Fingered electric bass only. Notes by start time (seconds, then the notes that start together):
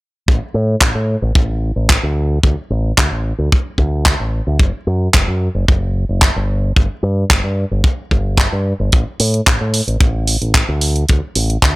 0.28 A1
0.54 A2
0.81 A1
0.95 A2
1.22 A1
1.35 A1
1.76 A1
2.03 D2
2.44 D2
2.70 A1
2.98 D2
3.11 A1
3.38 D2
3.78 D2
4.20 A1
4.47 D2
4.59 F#1
4.87 F#2
5.14 F#1
5.27 F#2
5.55 F#1
5.68 F#1
6.09 F#1
6.36 G1
6.77 G1
7.03 G2
7.30 G1
7.44 G2
7.71 G1
8.11 G1
8.52 G2
8.80 G1
8.93 A1
9.20 A2
9.47 A1
9.61 A2
9.87 A1
10.00 A1
10.41 A1
10.69 D2
11.10 D2
11.36 A1
11.62 D2